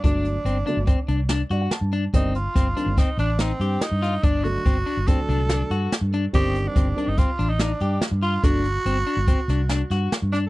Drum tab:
HH |xxxxxxxxxx|xxxxxxxxxx|xxxxxxxxxx|xxxxxxxxxx|
SD |------o-o-|--o-o-o-oo|------o-o-|------o-o-|
BD |o---o-----|o-o-o-----|o-o-o-----|o-o-o-----|

HH |xxxxxxxxxx|
SD |-----ooooo|
BD |o---o-----|